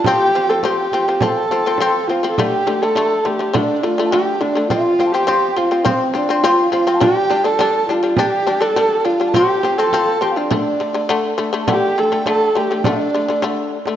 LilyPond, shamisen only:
\new Staff \with { instrumentName = "Shamisen" } { \clef bass \time 4/4 \tempo 4 = 103 <f c'>8 <f c'>16 <f c'>16 <f c'>8 <f c'>16 <f c'>16 <f c'>8 <f c'>16 <f c'>16 <f c'>8 <f c'>16 <f c'>16 | <d a>8 <d a>16 <d a>16 <d a>8 <d a>16 <d a>16 <d a>8 <d a>16 <d a>16 <d a>8 <d a>16 <d a>16 | <f c'>8 <f c'>16 <f c'>16 <f c'>8 <f c'>16 <f c'>16 <f c'>8 <f c'>16 <f c'>16 <f c'>8 <f c'>16 <f c'>16 | <g d'>8 <g d'>16 <g d'>16 <g d'>8 <g d'>16 <g d'>16 <g d'>8 <g d'>16 <g d'>16 <g d'>8 <g d'>16 <g d'>16 |
<f c'>8 <f c'>16 <f c'>16 <f c'>8 <f c'>16 <f c'>16 <d a>8 <d a>16 <d a>16 <d a>8 <d a>16 <d a>16 | <d a>8 <d a>16 <d a>16 <d a>8 <d a>16 <d a>16 <d a>8 <d a>16 <d a>16 <d a>8 r16 <d a>16 | }